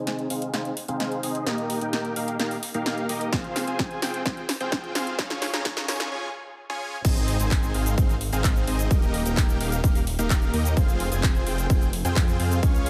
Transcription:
Already playing: C4 D#4 G#4 C5 G#5
0.07 snare, closed hi-hat
0.19 closed hi-hat
0.30 C4 D#4 G#4 C5 F5, open hi-hat
0.42 closed hi-hat
0.54 C4 D#4 G#4 C5 F5, snare, closed hi-hat
0.65 closed hi-hat
0.77 open hi-hat
0.88 C4 D#4 G#4 C5 F5, closed hi-hat
1.00 snare, closed hi-hat
1.12 closed hi-hat
1.23 C4 D#4 G#4 C5 D#5, open hi-hat
1.35 closed hi-hat
1.47 A#3 D#4 G4 A#4 D#5, snare, closed hi-hat
1.58 closed hi-hat
1.70 open hi-hat
1.81 A#3 D#4 G4 A#4 G5, closed hi-hat
1.93 snare, closed hi-hat
2.05 closed hi-hat
2.16 A#3 D#4 G4 A#4 F5, open hi-hat
2.28 closed hi-hat
2.40 A#3 D#4 G4 A#4 F5, snare, closed hi-hat
2.51 open hi-hat
2.63 open hi-hat
2.74 A#3 D#4 G4 A#4 F5, closed hi-hat
2.86 snare, closed hi-hat
2.98 closed hi-hat
3.09 A#3 D#4 G4 A#4 D#5, open hi-hat
3.21 closed hi-hat
3.33 C4 F4 G#4 C5 F5, kick, snare, closed hi-hat
3.44 closed hi-hat
3.56 snare, open hi-hat
3.67 C4 F4 G#4 C5 G#5, closed hi-hat
3.79 kick, snare, closed hi-hat
3.91 closed hi-hat
4.02 C4 F4 G#4 C5 G5, snare, open hi-hat
4.14 closed hi-hat
4.26 kick, snare, closed hi-hat
4.37 closed hi-hat
4.49 snare, open hi-hat
4.60 C4 F4 G#4 C5 G5, closed hi-hat
4.72 kick, snare, closed hi-hat
4.84 closed hi-hat
4.95 C4 F4 G#4 C5 F5, snare, open hi-hat
5.07 closed hi-hat
5.19 C#4 G#4, kick, snare, closed hi-hat
5.30 snare, closed hi-hat
5.42 snare, open hi-hat
5.54 C#4 F4 G#4 C#5 A#5, snare, closed hi-hat
5.65 kick, snare, closed hi-hat
5.77 snare, closed hi-hat
5.88 C#4 F4 G#4 C#5 G#5, snare, open hi-hat
6.00 snare, closed hi-hat
6.12 C#4 F4 G#4 C#5 G#5
6.70 C#4 F4 G#4 C#5 G#5
7.05 G#1 C4 D#4 G#4 C5 D#5, kick, closed hi-hat, crash, ride, shaker
7.16 closed hi-hat, shaker
7.28 open hi-hat
7.40 G#1 C4 D#4 G#4 C5 G#5, closed hi-hat, shaker
7.51 kick, clap, closed hi-hat, ride, shaker
7.63 closed hi-hat, shaker
7.74 G#1 C4 D#4 G#4 C5 F5, open hi-hat
7.86 closed hi-hat, shaker
7.98 G#1 C4 D#4 C5, kick, closed hi-hat, ride, shaker
8.09 closed hi-hat, shaker
8.21 open hi-hat
8.33 G#1 C4 D#4 G#4 C5 F5, closed hi-hat, shaker
8.44 kick, clap, closed hi-hat, ride, shaker
8.56 closed hi-hat, shaker
8.67 G#1 C4 D#4 G#4 C5 D#5, open hi-hat
8.79 closed hi-hat, shaker
8.91 D#1 A#3 G4 A#4, kick, closed hi-hat, ride, shaker
9.02 closed hi-hat, shaker
9.14 open hi-hat
9.26 D#1 A#3 D#4 G4 A#4 G5, closed hi-hat, shaker
9.37 kick, clap, closed hi-hat, ride, shaker
9.49 closed hi-hat, shaker
9.61 D#1 A#3 D#4 G4 A#4 F5, open hi-hat
9.72 closed hi-hat, shaker
9.84 D#1 A#3 G4 F5, kick, closed hi-hat, ride, shaker
9.95 open hi-hat, shaker
10.07 open hi-hat
10.19 D#1 A#3 D#4 G4 A#4 F5, closed hi-hat, shaker
10.30 kick, clap, closed hi-hat, ride, shaker
10.42 closed hi-hat, shaker
10.54 D#2 A#3 D#4 G4 A#4 D#5, open hi-hat
10.65 closed hi-hat, shaker
10.77 F1 C4 F4 G#4, kick, closed hi-hat, ride, shaker
10.88 closed hi-hat, shaker
11.00 open hi-hat
11.12 F1 C4 F4 G#4 C5 G#5, closed hi-hat, shaker
11.23 kick, clap, closed hi-hat, ride, shaker
11.35 closed hi-hat, shaker
11.47 F1 C4 F4 G#4 C5 G5, open hi-hat
11.58 closed hi-hat, shaker
11.70 F1 C4 F4 G#4 C5, kick, closed hi-hat, ride, shaker
11.81 closed hi-hat, shaker
11.93 open hi-hat
12.05 F2 C4 F4 G#4 C5 G5, closed hi-hat, shaker
12.16 kick, clap, closed hi-hat, ride, shaker
12.28 closed hi-hat, shaker
12.40 F2 C4 F4 G#4 C5 F5, open hi-hat
12.51 closed hi-hat, shaker
12.63 C#2 C#4 G#4 C#5, kick, closed hi-hat, ride, shaker
12.75 closed hi-hat, shaker
12.86 open hi-hat

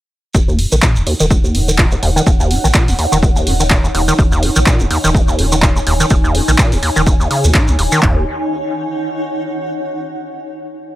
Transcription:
0.34 D#1 D#2 D#4, kick, shekere
0.48 D#2, shekere
0.59 F#2, open hi-hat
0.72 A#1 D#3, shekere
0.77 C#5
0.82 A#2, kick, clap, shekere
0.87 F#5
0.96 D#1 D#2, shekere
1.07 D#2, open hi-hat
1.20 D#1 D#3, shekere
1.31 C#2, kick, shekere
1.44 D#2, shekere
1.55 D#1 F#2, open hi-hat
1.68 D#3, shekere
1.78 A#2, kick, clap, shekere
1.91 D#2, shekere
2.03 D#1 D#2, open hi-hat
2.16 D#3, shekere
2.27 D#1 D#2, kick, shekere
2.40 D#2, shekere
2.51 F#2, open hi-hat
2.64 A#1 D#3, shekere
2.74 A#2, kick, clap, shekere
2.88 D#1 D#2, open hi-hat, shekere
2.99 D#2, open hi-hat
3.12 D#1 D#3, shekere
3.23 C#2, kick, shekere
3.36 D#2, shekere
3.47 D#1 F#2, open hi-hat
3.60 D#3, shekere
3.70 A#2, kick, clap, shekere
3.84 D#2, shekere
3.95 D#1 D#2, open hi-hat
4.08 D#3 G#5, shekere
4.19 D#1 D#2, kick, shekere
4.32 D#2, shekere
4.43 F#2, open hi-hat
4.56 A#1 D#3, shekere
4.66 A#2, kick, clap, shekere
4.80 D#1 D#2, shekere
4.91 D#2, open hi-hat
5.04 D#1 D#3, shekere
5.15 C#2, kick, shekere
5.28 D#2, shekere
5.39 D#1 F#2, open hi-hat
5.52 D#3, shekere
5.62 A#2, kick, clap, shekere
5.76 D#2, shekere
5.87 D#1 D#2, open hi-hat
6.00 D#3, shekere
6.10 D#1 D#2, kick, shekere
6.24 D#2, shekere
6.35 F#2, open hi-hat
6.48 A#1 D#3, shekere
6.58 A#2, kick, clap, shekere
6.72 D#1 D#2, open hi-hat, shekere
6.83 D#2, open hi-hat
6.96 D#1 D#3, shekere
7.07 C#2, kick, shekere
7.20 D#2, shekere
7.31 C#3, open hi-hat
7.44 D#1 D#2, shekere
7.54 G#2, kick, clap, shekere
7.68 C#2 D#2, shekere
7.79 D#1 D#2, open hi-hat
7.92 D#3, shekere
8.02 D#1 D#2 D#4, kick, clap, floor tom
8.11 C#5
8.18 F#5

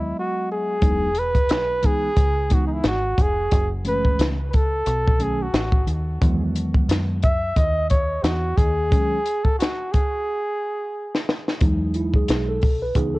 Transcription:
Already playing: D#2 F#3 G#3 B3 E4 D#5
0.19 F#4
0.52 G#4
0.81 E1 F#3 G#3 B3 D#4, kick, closed hi-hat
1.15 B4, closed hi-hat
1.35 kick, closed hi-hat
1.49 B1, snare, closed hi-hat
1.82 E3 G#3 B3 D#4 G#4, kick, closed hi-hat
2.16 C#2, kick, closed hi-hat
2.49 E3 G#3 B3 D#4, kick, closed hi-hat
2.54 F#4
2.67 D#4
2.73 E4
2.84 G#1 F#4, snare, closed hi-hat
3.18 F1, kick, closed hi-hat
3.22 G#4
3.51 F#1, kick, closed hi-hat
3.84 E3 G#3 A3 C#4, closed hi-hat
3.88 B4
4.05 kick
4.19 C#2, snare, closed hi-hat
4.49 B4, closed hi-hat
4.54 A4, kick
4.86 B1, closed hi-hat
5.08 kick
5.19 D#3 F#3 A3 C#4 G#4, closed hi-hat
5.43 F#4
5.54 A1, snare, closed hi-hat
5.72 kick
5.87 D#2, closed hi-hat
6.21 E2 D#3 F#3 G3 B3, kick, closed hi-hat
6.28 G#3
6.56 closed hi-hat
6.75 kick
6.89 F#2, snare, closed hi-hat
7.23 E5, kick, closed hi-hat
7.56 D#2 D#5, kick, closed hi-hat
7.90 C#5, kick, closed hi-hat
8.23 E2 F#4, snare, closed hi-hat
8.57 D#2 G#4, kick, closed hi-hat
8.90 D#3 F#3 G#3 C#4, kick, closed hi-hat
9.26 closed hi-hat
9.44 A4, kick
9.59 F#4, snare, closed hi-hat
9.92 G#4, kick, closed hi-hat
11.15 snare
11.29 snare
11.48 snare
11.60 E2 F#3 G#3 D#4, kick, closed hi-hat
11.94 E4, closed hi-hat
12.14 G#4, kick
12.28 B1, snare, closed hi-hat
12.49 A4
12.61 kick, open hi-hat
12.82 B4
12.95 C#2 E3 B3 D#4 G#4, kick, closed hi-hat
13.14 A4

